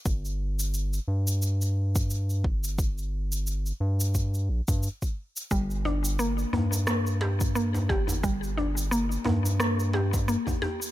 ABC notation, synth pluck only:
X:1
M:4/4
L:1/16
Q:"Swing 16ths" 1/4=88
K:Gm
V:1 name="Synth pluck"
z16 | z16 | G,2 D2 B,2 B,2 B,2 G2 B, z G z | G,2 D2 B,2 B,2 B,2 G2 B, z G z |]